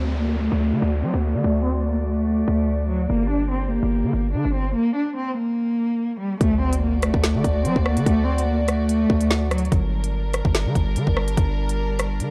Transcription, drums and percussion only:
0, 0, Header, 1, 2, 480
1, 0, Start_track
1, 0, Key_signature, -2, "minor"
1, 0, Tempo, 413793
1, 1674, Time_signature, 4, 2, 24, 8
1, 14274, End_track
2, 0, Start_track
2, 0, Title_t, "Drums"
2, 7433, Note_on_c, 9, 36, 121
2, 7433, Note_on_c, 9, 42, 75
2, 7549, Note_off_c, 9, 36, 0
2, 7549, Note_off_c, 9, 42, 0
2, 7803, Note_on_c, 9, 42, 79
2, 7919, Note_off_c, 9, 42, 0
2, 8148, Note_on_c, 9, 42, 81
2, 8153, Note_on_c, 9, 37, 98
2, 8264, Note_off_c, 9, 42, 0
2, 8269, Note_off_c, 9, 37, 0
2, 8281, Note_on_c, 9, 36, 100
2, 8393, Note_on_c, 9, 42, 88
2, 8394, Note_on_c, 9, 38, 117
2, 8397, Note_off_c, 9, 36, 0
2, 8509, Note_off_c, 9, 42, 0
2, 8510, Note_off_c, 9, 38, 0
2, 8634, Note_on_c, 9, 36, 97
2, 8637, Note_on_c, 9, 42, 71
2, 8750, Note_off_c, 9, 36, 0
2, 8753, Note_off_c, 9, 42, 0
2, 8874, Note_on_c, 9, 42, 77
2, 8990, Note_off_c, 9, 42, 0
2, 9001, Note_on_c, 9, 36, 87
2, 9114, Note_on_c, 9, 37, 96
2, 9117, Note_off_c, 9, 36, 0
2, 9230, Note_off_c, 9, 37, 0
2, 9243, Note_on_c, 9, 42, 83
2, 9354, Note_on_c, 9, 36, 123
2, 9355, Note_off_c, 9, 42, 0
2, 9355, Note_on_c, 9, 42, 75
2, 9470, Note_off_c, 9, 36, 0
2, 9471, Note_off_c, 9, 42, 0
2, 9724, Note_on_c, 9, 42, 78
2, 9840, Note_off_c, 9, 42, 0
2, 10068, Note_on_c, 9, 42, 82
2, 10074, Note_on_c, 9, 37, 95
2, 10184, Note_off_c, 9, 42, 0
2, 10190, Note_off_c, 9, 37, 0
2, 10313, Note_on_c, 9, 42, 84
2, 10429, Note_off_c, 9, 42, 0
2, 10554, Note_on_c, 9, 36, 100
2, 10670, Note_off_c, 9, 36, 0
2, 10679, Note_on_c, 9, 42, 76
2, 10795, Note_off_c, 9, 42, 0
2, 10795, Note_on_c, 9, 38, 113
2, 10911, Note_off_c, 9, 38, 0
2, 11034, Note_on_c, 9, 37, 95
2, 11034, Note_on_c, 9, 42, 63
2, 11115, Note_off_c, 9, 42, 0
2, 11115, Note_on_c, 9, 42, 51
2, 11150, Note_off_c, 9, 37, 0
2, 11194, Note_off_c, 9, 42, 0
2, 11194, Note_on_c, 9, 42, 36
2, 11274, Note_on_c, 9, 36, 123
2, 11275, Note_off_c, 9, 42, 0
2, 11275, Note_on_c, 9, 42, 77
2, 11390, Note_off_c, 9, 36, 0
2, 11391, Note_off_c, 9, 42, 0
2, 11644, Note_on_c, 9, 42, 78
2, 11760, Note_off_c, 9, 42, 0
2, 11989, Note_on_c, 9, 42, 80
2, 11994, Note_on_c, 9, 37, 94
2, 12105, Note_off_c, 9, 42, 0
2, 12110, Note_off_c, 9, 37, 0
2, 12121, Note_on_c, 9, 36, 103
2, 12234, Note_on_c, 9, 38, 112
2, 12234, Note_on_c, 9, 42, 86
2, 12237, Note_off_c, 9, 36, 0
2, 12350, Note_off_c, 9, 38, 0
2, 12350, Note_off_c, 9, 42, 0
2, 12474, Note_on_c, 9, 36, 99
2, 12476, Note_on_c, 9, 42, 71
2, 12590, Note_off_c, 9, 36, 0
2, 12592, Note_off_c, 9, 42, 0
2, 12713, Note_on_c, 9, 42, 74
2, 12829, Note_off_c, 9, 42, 0
2, 12841, Note_on_c, 9, 36, 89
2, 12954, Note_on_c, 9, 37, 98
2, 12957, Note_off_c, 9, 36, 0
2, 13070, Note_off_c, 9, 37, 0
2, 13082, Note_on_c, 9, 42, 77
2, 13194, Note_off_c, 9, 42, 0
2, 13194, Note_on_c, 9, 36, 122
2, 13194, Note_on_c, 9, 42, 75
2, 13310, Note_off_c, 9, 36, 0
2, 13310, Note_off_c, 9, 42, 0
2, 13564, Note_on_c, 9, 42, 78
2, 13680, Note_off_c, 9, 42, 0
2, 13908, Note_on_c, 9, 42, 79
2, 13914, Note_on_c, 9, 37, 94
2, 14024, Note_off_c, 9, 42, 0
2, 14030, Note_off_c, 9, 37, 0
2, 14153, Note_on_c, 9, 42, 86
2, 14269, Note_off_c, 9, 42, 0
2, 14274, End_track
0, 0, End_of_file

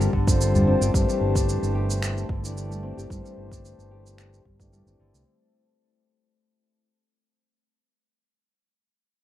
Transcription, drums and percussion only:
0, 0, Header, 1, 3, 480
1, 0, Start_track
1, 0, Tempo, 540541
1, 835, Time_signature, 4, 2, 24, 8
1, 8200, End_track
2, 0, Start_track
2, 0, Title_t, "Udu"
2, 482, Note_on_c, 9, 64, 87
2, 571, Note_off_c, 9, 64, 0
2, 8200, End_track
3, 0, Start_track
3, 0, Title_t, "Drums"
3, 12, Note_on_c, 9, 82, 32
3, 100, Note_off_c, 9, 82, 0
3, 117, Note_on_c, 9, 36, 60
3, 206, Note_off_c, 9, 36, 0
3, 244, Note_on_c, 9, 36, 105
3, 251, Note_on_c, 9, 82, 67
3, 333, Note_off_c, 9, 36, 0
3, 340, Note_off_c, 9, 82, 0
3, 365, Note_on_c, 9, 82, 53
3, 454, Note_off_c, 9, 82, 0
3, 493, Note_on_c, 9, 82, 32
3, 582, Note_off_c, 9, 82, 0
3, 729, Note_on_c, 9, 82, 62
3, 818, Note_off_c, 9, 82, 0
3, 836, Note_on_c, 9, 36, 111
3, 845, Note_on_c, 9, 82, 55
3, 925, Note_off_c, 9, 36, 0
3, 934, Note_off_c, 9, 82, 0
3, 971, Note_on_c, 9, 82, 33
3, 1060, Note_off_c, 9, 82, 0
3, 1203, Note_on_c, 9, 36, 89
3, 1211, Note_on_c, 9, 82, 68
3, 1292, Note_off_c, 9, 36, 0
3, 1300, Note_off_c, 9, 82, 0
3, 1325, Note_on_c, 9, 82, 56
3, 1414, Note_off_c, 9, 82, 0
3, 1452, Note_on_c, 9, 82, 32
3, 1541, Note_off_c, 9, 82, 0
3, 1691, Note_on_c, 9, 82, 63
3, 1780, Note_off_c, 9, 82, 0
3, 1798, Note_on_c, 9, 26, 78
3, 1806, Note_on_c, 9, 82, 55
3, 1887, Note_off_c, 9, 26, 0
3, 1895, Note_off_c, 9, 82, 0
3, 1933, Note_on_c, 9, 82, 31
3, 2022, Note_off_c, 9, 82, 0
3, 2035, Note_on_c, 9, 36, 99
3, 2124, Note_off_c, 9, 36, 0
3, 2173, Note_on_c, 9, 82, 68
3, 2262, Note_off_c, 9, 82, 0
3, 2287, Note_on_c, 9, 82, 52
3, 2376, Note_off_c, 9, 82, 0
3, 2414, Note_on_c, 9, 82, 31
3, 2503, Note_off_c, 9, 82, 0
3, 2654, Note_on_c, 9, 82, 60
3, 2743, Note_off_c, 9, 82, 0
3, 2755, Note_on_c, 9, 36, 102
3, 2767, Note_on_c, 9, 82, 52
3, 2844, Note_off_c, 9, 36, 0
3, 2856, Note_off_c, 9, 82, 0
3, 2892, Note_on_c, 9, 82, 32
3, 2981, Note_off_c, 9, 82, 0
3, 3122, Note_on_c, 9, 36, 87
3, 3130, Note_on_c, 9, 82, 62
3, 3210, Note_off_c, 9, 36, 0
3, 3219, Note_off_c, 9, 82, 0
3, 3243, Note_on_c, 9, 82, 52
3, 3332, Note_off_c, 9, 82, 0
3, 3372, Note_on_c, 9, 82, 29
3, 3461, Note_off_c, 9, 82, 0
3, 3611, Note_on_c, 9, 82, 58
3, 3699, Note_off_c, 9, 82, 0
3, 3715, Note_on_c, 9, 26, 71
3, 3723, Note_on_c, 9, 82, 52
3, 3804, Note_off_c, 9, 26, 0
3, 3811, Note_off_c, 9, 82, 0
3, 3851, Note_on_c, 9, 82, 28
3, 3939, Note_off_c, 9, 82, 0
3, 3955, Note_on_c, 9, 36, 55
3, 4043, Note_off_c, 9, 36, 0
3, 4082, Note_on_c, 9, 36, 93
3, 4088, Note_on_c, 9, 82, 60
3, 4170, Note_off_c, 9, 36, 0
3, 4177, Note_off_c, 9, 82, 0
3, 4200, Note_on_c, 9, 82, 49
3, 4289, Note_off_c, 9, 82, 0
3, 4329, Note_on_c, 9, 82, 30
3, 4418, Note_off_c, 9, 82, 0
3, 4571, Note_on_c, 9, 82, 62
3, 4659, Note_off_c, 9, 82, 0
3, 8200, End_track
0, 0, End_of_file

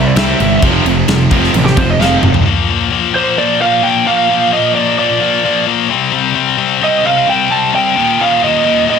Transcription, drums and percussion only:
0, 0, Header, 1, 2, 480
1, 0, Start_track
1, 0, Tempo, 459418
1, 653, Time_signature, 4, 2, 24, 8
1, 9395, End_track
2, 0, Start_track
2, 0, Title_t, "Drums"
2, 170, Note_on_c, 9, 49, 81
2, 178, Note_on_c, 9, 38, 118
2, 274, Note_off_c, 9, 49, 0
2, 283, Note_off_c, 9, 38, 0
2, 418, Note_on_c, 9, 49, 61
2, 522, Note_off_c, 9, 49, 0
2, 653, Note_on_c, 9, 36, 102
2, 657, Note_on_c, 9, 49, 75
2, 757, Note_off_c, 9, 36, 0
2, 762, Note_off_c, 9, 49, 0
2, 897, Note_on_c, 9, 49, 62
2, 1002, Note_off_c, 9, 49, 0
2, 1129, Note_on_c, 9, 49, 74
2, 1137, Note_on_c, 9, 38, 118
2, 1233, Note_off_c, 9, 49, 0
2, 1242, Note_off_c, 9, 38, 0
2, 1368, Note_on_c, 9, 49, 56
2, 1370, Note_on_c, 9, 36, 79
2, 1472, Note_off_c, 9, 49, 0
2, 1475, Note_off_c, 9, 36, 0
2, 1501, Note_on_c, 9, 38, 32
2, 1606, Note_off_c, 9, 38, 0
2, 1609, Note_on_c, 9, 49, 86
2, 1714, Note_off_c, 9, 49, 0
2, 1744, Note_on_c, 9, 38, 32
2, 1848, Note_off_c, 9, 38, 0
2, 1850, Note_on_c, 9, 49, 62
2, 1851, Note_on_c, 9, 36, 86
2, 1955, Note_off_c, 9, 36, 0
2, 1955, Note_off_c, 9, 49, 0
2, 2101, Note_on_c, 9, 38, 66
2, 2205, Note_off_c, 9, 38, 0
2, 2329, Note_on_c, 9, 45, 92
2, 2434, Note_off_c, 9, 45, 0
2, 2448, Note_on_c, 9, 43, 93
2, 2552, Note_off_c, 9, 43, 0
2, 9395, End_track
0, 0, End_of_file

